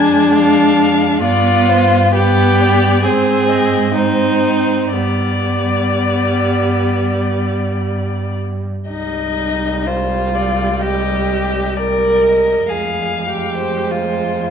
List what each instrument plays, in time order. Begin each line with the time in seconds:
Already playing: cello F2, viola G#3, violin D4 G#5
0.32 violin F5
1.21 cello G2, viola B3, violin F4 D5
1.69 violin C5
2.12 viola B3, violin G4 B4
2.60 violin D5
3.03 cello G#2, viola C4, violin G#4 C5
3.49 violin D#5
3.94 viola C4, violin D#4 C5
4.92 cello G2, viola G3, violin B3 D5
8.89 cello C2, viola G3, violin D#4 D#5
9.86 violin F4 C5
10.35 violin D5
10.82 violin G4 D#5
11.77 violin A#4 D5
12.23 violin D#5
12.68 cello F2, viola G#3, violin G#4 F5
13.30 violin G4
13.59 violin C5
13.91 violin F4